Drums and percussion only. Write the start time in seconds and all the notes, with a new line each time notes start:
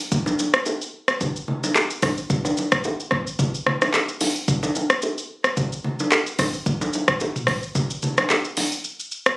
0.12 kick, low conga, shaker
0.26 low bongo, shaker
0.39 low bongo, shaker
0.54 cross-stick, shaker
0.66 high bongo, shaker
0.82 shaker
1.08 cross-stick, shaker
1.21 kick, low conga, shaker
1.36 shaker
1.48 low conga
1.64 low bongo, shaker
1.75 clap, high bongo, shaker
1.90 shaker
2.02 kick, cross-stick, open hi-hat, high bongo, low bongo, shaker
2.18 shaker
2.30 kick, low conga, shaker
2.45 low bongo, shaker
2.57 low bongo, shaker
2.72 kick, cross-stick, shaker
2.84 high bongo, shaker
3.00 shaker
3.11 kick, cross-stick
3.27 shaker
3.39 kick, low conga, shaker
3.54 shaker
3.66 cross-stick, low conga
3.82 cross-stick, low bongo, shaker
3.94 clap, high bongo, shaker
4.08 shaker
4.21 open hi-hat, high bongo, low bongo, shaker
4.36 shaker
4.48 kick, low conga, shaker
4.63 low bongo, shaker
4.75 low bongo, shaker
4.90 cross-stick, shaker
5.02 high bongo, shaker
5.18 shaker
5.44 cross-stick, shaker
5.57 kick, low conga, shaker
5.72 shaker
5.84 low conga
6.00 low bongo, shaker
6.12 clap, high bongo, shaker
6.27 shaker
6.39 kick, cross-stick, open hi-hat, high bongo, low bongo, shaker
6.54 shaker
6.66 kick, low conga, shaker
6.81 low bongo, shaker
6.93 low bongo, shaker
7.08 kick, cross-stick, shaker
7.20 high bongo, shaker
7.36 mid tom, shaker
7.47 kick, cross-stick, open hi-hat
7.63 shaker
7.75 kick, low conga, shaker
7.90 shaker
8.02 low conga, shaker
8.18 cross-stick, low bongo, shaker
8.30 clap, high bongo, shaker
8.45 shaker
8.57 open hi-hat, high bongo, low bongo
8.72 shaker
8.84 shaker
9.00 shaker
9.12 shaker
9.26 cross-stick, shaker